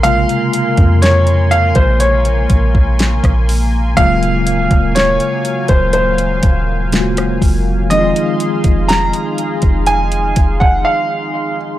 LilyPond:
<<
  \new Staff \with { instrumentName = "Grand piano" } { \time 4/4 \key bes \minor \tempo 4 = 61 f''4 des''8 f''16 c''16 des''4. r8 | f''4 des''8. c''16 c''4. r8 | ees''4 bes''4 aes''8. ges''16 f''8. r16 | }
  \new Staff \with { instrumentName = "Analog synth pad" } { \time 4/4 \key bes \minor << { <bes' aes'' c'''>1 | <ges f''>1 | <aes' f'' c'''>1 | } \\ { bes1~ | bes1 | ees'1 | } >> }
  \new Staff \with { instrumentName = "Tine electric piano" } { \clef bass \time 4/4 \key bes \minor <c des aes bes f'>1 | <des f ges aes bes f'>2. <des ges aes bes f' ges'>4 | <ees f aes c' ees' f'>1 | }
  \new Staff \with { instrumentName = "808-style bass" } { \clef bass \time 4/4 \key bes \minor bes,,16 r8 f,4 bes,,8. bes,,8. bes,,8. | ees,,8. ees,,8 r8 ees,,8. ees,,4 f,,8~ | f,,16 r8 f,,8 r8 f,,8. f,,8 r4 | }
  \new DrumStaff \with { instrumentName = "Drums" } \drummode { \time 4/4 hh16 hh16 hh16 <hh bd>16 <hh sn>16 hh16 hh16 <hh bd>16 hh16 hh16 <hh bd>16 bd16 <hh sn>16 <hh bd ss>16 hho8 | <hh bd>16 hh16 hh16 <hh bd>16 <hh sn>16 hh16 hh16 <hh bd>16 hh16 hh16 <hh bd>8 <hh sn>16 <hh ss>16 <hho bd>8 | hh16 hh16 hh16 <hh bd>16 <hh sn>16 hh16 hh16 <hh bd>16 hh16 hh16 <hh bd>16 bd16 r4 | }
>>